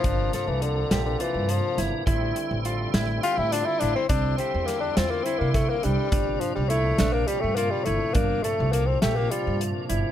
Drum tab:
HH |xxxxxxx|xxxxxxx|xxxxxxx|xxxxxxx|
SD |-o-o--o|---o---|--oo-o-|---o---|
BD |o------|o------|o----o-|o------|

HH |xxxxxxx|
SD |---o---|
BD |o------|